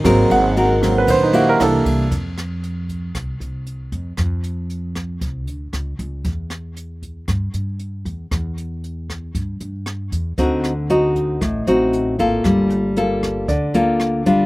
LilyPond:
<<
  \new Staff \with { instrumentName = "Grand piano" } { \time 4/4 \key c \phrygian \tempo 4 = 116 ees''8 ges''8 r8. ces''16 c''16 ees'16 ges'16 bes'16 a'8. r16 | \key f \major r1 | r1 | r1 |
r1 | r4 ees''2. | r2 d''2 | }
  \new Staff \with { instrumentName = "Grand piano" } { \time 4/4 \key c \phrygian <ges bes c'>4. <ges bes c'>8 r4 <e bes d'>8 r8 | \key f \major r1 | r1 | r1 |
r1 | r1 | r1 | }
  \new Staff \with { instrumentName = "Nylon-string guitar" } { \time 4/4 \key c \phrygian << { <c' ges' bes'>8 r8 <c' ges' bes'>4 r8 <bes fes' g'>4. | \key f \major r1 | r1 | r1 |
r1 | <c' ees' fis'>8 r8 <c' ees' fis'>4 r8 <c' ees' fis'>4 <bes f' a'>8~ | <bes f' a'>4 <bes f' a'>4 r8 <bes f' a'>4 <g d' f'>8 | } \\ { aes2 ees4 r4 | r1 | r1 | r1 |
r1 | d2 a,2 | g2 d2 | } >> }
  \new Staff \with { instrumentName = "Upright bass" } { \clef bass \time 4/4 \key c \phrygian aes,,8 aes,,4. bes,,4 c,8 c,8 | \key f \major f,2 c,8 c,4 f,8 | f,2 c,8 d,8 des,8 des,8 | e,2 g,8 g,4 e,8 |
e,2 g,8 g,4 e,8 | d,2 a,,8 a,,4 aes,,8 | g,,2 d,8 d,4 g,,8 | }
  \new DrumStaff \with { instrumentName = "Drums" } \drummode { \time 4/4 <bd cymr ss>8 cymr8 cymr8 <bd cymr ss>8 <bd cymr>8 cymr8 <cymr ss>8 <bd cymr>8 | <hh bd>8 <hh ss>8 hh8 <hh bd>8 <hh bd ss>8 hh8 hh8 <hh bd>8 | <hh bd ss>8 hh8 hh8 <hh bd ss>8 <hh bd>8 hh8 <hh ss>8 <hh bd>8 | <hh bd>8 <hh ss>8 hh8 <hh bd>8 <hh bd ss>8 hh8 hh8 <hh bd>8 |
<hh bd ss>8 hh8 hh8 <hh bd ss>8 <hh bd>8 hh8 <hh ss>8 <hh bd>8 | <hh bd>8 <hh ss>8 hh8 <hh bd>8 <hh bd ss>8 hh8 hh8 <hh bd>8 | <hh bd ss>8 hh8 hh8 <hh bd ss>8 <hh bd>8 hh8 <hh ss>8 <hh bd>8 | }
>>